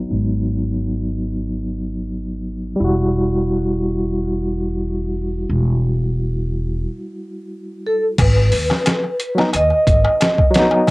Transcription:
Already playing: F#3 B3 D#4
0.11 G#1
2.76 G3
2.80 E1 E4
2.84 F#4
5.49 E1
7.86 A4
8.18 G#1 B4, kick, closed hi-hat, crash, darbuka tek
8.37 darbuka tek
8.52 D#2, open hi-hat
8.70 snare, darbuka tek
8.86 snare, closed hi-hat, darbuka tek
9.04 darbuka tek
9.20 closed hi-hat
9.35 F#3 B3, darbuka tek
9.39 D#4, snare
9.53 D#2 D#5, closed hi-hat, darbuka tek
9.70 darbuka tek
9.87 G#1, kick, closed hi-hat
10.05 darbuka tek
10.21 snare, closed hi-hat, darbuka tek
10.38 kick, darbuka tek
10.51 F#3, closed hi-hat
10.55 B3 D#4, snare
10.71 darbuka tek
10.87 darbuka tek

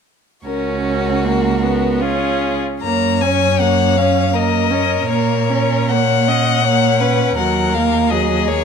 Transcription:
0.45 C#2 C#4 F#4 A#4
0.86 A#4
1.25 A#3
1.63 B3
2.01 C#4 F4 G#4
2.82 F#2 A#3 C#5 A#5
3.21 C#4 G#5
3.59 A#3 F#5
3.97 C#4 F5
4.33 A#3 A#4 D#5
4.70 C#4 A#4
5.08 A#2 A#3 C#5
5.49 C#4
5.91 A#3 C#5 F#5
6.28 C#4 D#5
6.64 A#3 C#5
7.00 C#4 B4
7.37 D#2 F#3 A#4 F#5
7.74 A#3 F5
8.10 F#3 G#4 D#5
8.47 A#3 C#5

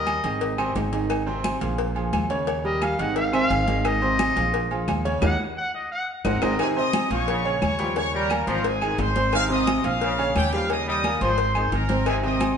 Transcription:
Already playing: D#2 G3 G4 A#4 D#5
0.07 cowbell, high conga, low agogo, claves
0.24 G#1 D#3 D#4 G#4, cowbell, high conga, low agogo
0.41 cowbell, high conga
0.58 C3 C4 C5, high conga, low agogo, claves
0.75 G#1 D#3 D#4 G#4, cowbell, high conga, low timbale, low agogo
0.92 D#3 D#4 G#4, cowbell, high conga
1.10 cowbell, high conga, low agogo, claves
1.27 C3 C4 C5, high conga
1.44 cowbell, high conga, low agogo, claves
1.61 A#1 F3 F4 G#4, cowbell, low agogo
1.78 cowbell, high conga
1.95 F3 F4 G#4, high conga, low agogo
2.13 D#2, cowbell, high conga, low agogo, claves
2.30 C#3 C#4 C#5, cowbell, high conga
2.47 C#3 C#4 C#5, cowbell, high conga, low agogo
2.65 G3 G4 A#4 D#5, high conga
2.82 F5, cowbell, high conga, low agogo, claves
2.99 G#1 D#3 D#4 G#4 F#5, cowbell, high conga, low agogo
3.16 F5, cowbell, high conga
3.33 C3 C4 C5 F5, high conga, low agogo, claves
3.50 G#1 D#3 D#4 G#4, cowbell, high conga, low agogo
3.67 D#3 D#4 G#4, cowbell, high conga
3.85 D#5, cowbell, high conga, low agogo, claves
4.02 C3 C4 C5, high conga
4.19 cowbell, high conga, low agogo, claves
4.36 A#1 F3 F4 G#4, cowbell, low agogo
4.54 cowbell, high conga
4.71 F3 F4 G#4, high conga, low agogo
4.88 D#2, cowbell, high conga, low timbale, low agogo, claves
5.05 C#3 C#4 C#5, cowbell, high conga
5.21 D#2 C#4 D#4 G4 F#5, cowbell, high conga, high timbale, claves
5.57 F#5
5.75 D#5
5.92 F#5
6.24 G#1 C4 D#4 G#4 A#4 F#5 A#5, cowbell, high conga, high timbale, claves
6.42 G#1 C4 D#4 G#4 D#5, cowbell, high conga, high timbale, claves
6.59 C3 D#3 D#4 G#4 D#5 G#5, cowbell, high conga, low agogo, claves
6.76 C3 C4 C5 D#5 D#6, high conga
6.93 cowbell, high conga, low agogo, claves
7.10 A#1 F3 F4 C#5 F5 C#6, cowbell, low agogo
7.27 C#3, cowbell, high conga
7.45 C#3 C#4 C#5, high conga, low agogo
7.62 D#2 C#5 C#6, cowbell, high conga, low agogo, claves
7.79 F3 G3 G4 G5, cowbell, high conga
7.96 C#3 C#4 C#5 C#6, cowbell, high conga, low agogo
8.13 G3 A#4 A#5, high conga
8.30 A#3 A#4 A#5, cowbell, high conga, low agogo, claves
8.47 G#1 F3 C4 A#4 C5 A#5 C6, cowbell, high conga, low agogo
8.64 G#4 G#5, cowbell, high conga
8.81 D#3 G#3 G#4 G#5, high conga, low agogo, claves
8.98 G#1 C5 C6, cowbell, high conga, low timbale, low agogo
9.16 C4 C5 C6, cowbell, high conga
9.33 C3 D#3 D#4 D#5 F5, cowbell, high conga, low agogo, claves
9.50 C3 C4 C5 D#5 D#6, high conga
9.67 cowbell, high conga, low agogo, claves
9.84 A#1 F3 F4 F5, cowbell, low agogo
10.01 C#3, cowbell, high conga
10.19 C#3 C#4 C#5, high conga, low agogo
10.35 D#2 G4 G5, cowbell, high conga, low agogo, claves
10.52 F3 G3 G4 F5 G5, cowbell, high conga
10.69 C#3 C#4 C#5 D#5 D#6, cowbell, high conga, low agogo
10.86 G3 D#5 D#6, high conga
11.04 A#3 A#4 A#5, cowbell, high conga, low agogo, claves
11.21 G#1 F3 C4 C5 C6, cowbell, high conga, low agogo
11.38 cowbell, high conga
11.55 D#3 G#3 G#4 G#5, high conga, low agogo, claves
11.72 G#1 A#4 A#5, cowbell, high conga, low agogo
11.89 C4 C5 C6, cowbell, high conga
12.06 C3 D#3 D#4 G#4 D#5 G#5, cowbell, high conga, low agogo, claves
12.23 C3 C4 C5 D#5 D#6, high conga
12.41 cowbell, high conga, low agogo, claves

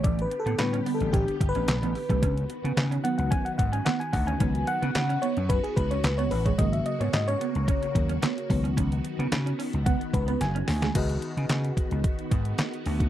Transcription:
Already playing: D3 B3 G4
0.04 A1 A3 D5, kick, closed hi-hat
0.19 B4, closed hi-hat
0.31 muted clean electric guitar stroke, closed hi-hat
0.40 A4
0.46 A2 B3, closed hi-hat
0.58 A2 D3 G3 B3 B4, muted clean electric guitar stroke, snare, clap, closed hi-hat
0.73 C#4, closed hi-hat
0.86 B3, open hi-hat
0.95 A4
1.00 A1, closed hi-hat
1.13 A1 C#4 G4, kick, closed hi-hat
1.28 muted clean electric guitar stroke, closed hi-hat
1.41 G1, kick, closed hi-hat
1.49 B4
1.55 A1 C#4, closed hi-hat
1.68 B1, snare, clap, closed hi-hat
1.83 A1 B3, closed hi-hat
1.95 muted clean electric guitar stroke, open hi-hat
2.10 B1 A3, kick, closed hi-hat
2.23 C#2 D#3 B3 C#4 F#4, kick, closed hi-hat
2.37 closed hi-hat
2.50 muted clean electric guitar stroke, closed hi-hat
2.64 C#3 B3, closed hi-hat
2.77 C#3, muted clean electric guitar stroke, snare, clap, closed hi-hat
2.91 C#4, closed hi-hat
3.04 D#3 F#3 B3 F#5, closed hi-hat
3.18 C#2 F#5, closed hi-hat
3.31 C#4 G#5, kick, closed hi-hat
3.45 F#5, muted clean electric guitar stroke, closed hi-hat
3.58 G#2 F#5, kick, closed hi-hat
3.72 C#4 G#5, closed hi-hat
3.85 B3 F#5, snare, clap, closed hi-hat
4.00 G#5, closed hi-hat
4.13 D2 F#5, muted clean electric guitar stroke, kick, open hi-hat
4.27 C#4 G#5, closed hi-hat
4.40 C#2 D#3 F#3 B3 C#4, kick, closed hi-hat
4.55 closed hi-hat
4.67 F#5, muted clean electric guitar stroke, closed hi-hat
4.82 C#3 B3, closed hi-hat
4.95 C#3, muted clean electric guitar stroke, snare, clap, closed hi-hat
5.10 C#4, closed hi-hat
5.22 B3 C#5, closed hi-hat
5.37 F#2, closed hi-hat
5.49 C#4 B4, kick, closed hi-hat
5.64 G#4, muted clean electric guitar stroke, closed hi-hat
5.76 C#2 B4, kick, closed hi-hat
5.91 C#4 C#5, closed hi-hat
6.04 C#2 B4, snare, clap, closed hi-hat
6.18 B3 C#5, closed hi-hat
6.31 A1 B4, muted clean electric guitar stroke, open hi-hat
6.45 G#3 C#5, kick, closed hi-hat
6.58 G#1 C#3 F#3 G#3 A#3 D#5, kick, closed hi-hat
6.73 E5, closed hi-hat
6.86 D#5, muted clean electric guitar stroke, closed hi-hat
7.00 G#2 B3 C#5, closed hi-hat
7.13 G#2 D#5, muted clean electric guitar stroke, snare, clap, closed hi-hat
7.28 C#4 C#5, closed hi-hat
7.41 B3, closed hi-hat
7.55 C#2, closed hi-hat
7.68 C#4, kick, closed hi-hat
7.83 muted clean electric guitar stroke, closed hi-hat
7.95 D#2 C#3 F#3 A#3, kick, closed hi-hat
8.09 C#4, closed hi-hat
8.22 B3, snare, clap, closed hi-hat
8.38 closed hi-hat
8.50 C#2 D#3 F#3 B3, muted clean electric guitar stroke, kick, open hi-hat
8.64 C#4, closed hi-hat
8.77 C#2 C#4, kick, closed hi-hat
8.92 closed hi-hat
9.04 muted clean electric guitar stroke, closed hi-hat
9.19 C#3 B3, closed hi-hat
9.32 C#3, muted clean electric guitar stroke, snare, clap, closed hi-hat
9.46 C#4, closed hi-hat
9.59 C#4, open hi-hat
9.73 C#2, closed hi-hat
9.86 B3 F#5, kick, closed hi-hat
10.01 muted clean electric guitar stroke, closed hi-hat
10.14 C#2 B4, kick, closed hi-hat
10.28 B3 B4, closed hi-hat
10.41 F#1 G#5, snare, closed hi-hat
10.55 C#4, closed hi-hat
10.68 D2, muted clean electric guitar stroke, snare, open hi-hat
10.82 G#3, snare, closed hi-hat
10.95 C#2 D#3 B3 F#4 G#4 B4 D#5, kick, closed hi-hat, crash
11.09 closed hi-hat
11.22 closed hi-hat
11.37 C#3, closed hi-hat
11.49 C#3, snare, clap, closed hi-hat
11.64 closed hi-hat
11.77 kick, closed hi-hat
11.91 C#2, closed hi-hat
12.04 kick, closed hi-hat
12.19 closed hi-hat
12.31 G#2, kick, closed hi-hat
12.45 closed hi-hat
12.58 snare, clap, closed hi-hat
12.74 closed hi-hat
12.86 D2, open hi-hat
13.00 kick, closed hi-hat

